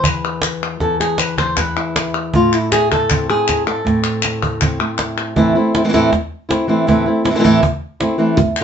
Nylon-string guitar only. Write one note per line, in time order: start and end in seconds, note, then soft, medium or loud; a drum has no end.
0.00 0.79 E2 medium
0.06 0.63 B4 medium
0.80 2.33 E2 medium
0.80 1.00 A4 medium
1.00 1.18 G#4 medium
1.18 1.38 B4 loud
1.39 1.57 C5 loud
1.58 2.15 B4 medium
1.77 2.38 E4 soft
2.34 3.84 A2 medium
2.34 2.53 F4 loud
2.53 2.72 E4 medium
2.72 2.91 G#4 loud
2.92 3.29 A4 loud
3.10 3.85 C4 soft
3.30 3.67 G#4 loud
3.67 5.37 A4 medium
3.85 5.35 A2 medium
3.85 4.60 C4 soft
4.61 4.79 C4 soft
4.80 5.34 A3 soft
4.80 5.35 C4 soft
5.36 5.54 A2 medium
5.36 5.54 E3 medium
5.36 5.54 A3 medium
5.36 5.55 C4 medium
5.36 5.54 E4 medium
5.55 5.74 A3 medium
5.55 5.74 C4 medium
5.55 5.73 E4 medium
5.75 5.83 A3 soft
5.75 5.84 C4 medium
5.75 5.84 E4 medium
5.84 5.87 E3 medium
5.84 5.88 A3 medium
5.84 5.88 C4 medium
5.84 5.89 E4 medium
5.89 5.93 E3 medium
5.89 5.92 A3 medium
5.89 5.93 C4 medium
5.89 5.93 E4 medium
5.93 6.11 A2 medium
5.93 6.11 E3 medium
5.93 6.11 A3 medium
5.93 6.12 C4 loud
5.93 6.12 E4 medium
6.12 muted nylon-string guitar stroke medium
6.49 6.67 A3 soft
6.49 6.68 C4 medium
6.49 6.67 E4 medium
6.67 6.86 E3 medium
6.67 6.86 A3 medium
6.67 6.87 C4 medium
6.67 6.87 E4 medium
6.87 7.05 A2 medium
6.87 7.05 E3 medium
6.87 7.06 A3 medium
6.87 7.06 C4 medium
6.87 7.05 E4 medium
7.06 7.25 A3 soft
7.06 7.24 C4 medium
7.06 7.23 E4 medium
7.24 7.30 A3 soft
7.24 7.30 C4 medium
7.24 7.30 E4 medium
7.30 7.33 E3 medium
7.30 7.34 A3 medium
7.30 7.35 C4 medium
7.30 7.35 E4 medium
7.34 7.38 E3 medium
7.34 7.39 A3 medium
7.34 7.39 C4 medium
7.34 7.39 E4 medium
7.39 7.43 E3 medium
7.39 7.43 A3 medium
7.39 7.44 C4 medium
7.39 7.44 E4 medium
7.44 7.61 A2 loud
7.44 7.62 E3 medium
7.44 7.62 A3 medium
7.44 7.62 C4 medium
7.44 7.62 E4 loud
7.63 muted nylon-string guitar stroke medium
8.00 8.17 A3 soft
8.00 8.17 C4 medium
8.00 8.18 E4 medium
8.18 8.36 E3 medium
8.18 8.37 A3 medium
8.18 8.37 C4 medium
8.18 8.37 E4 medium
8.37 muted nylon-string guitar stroke medium
8.61 8.64 D3 medium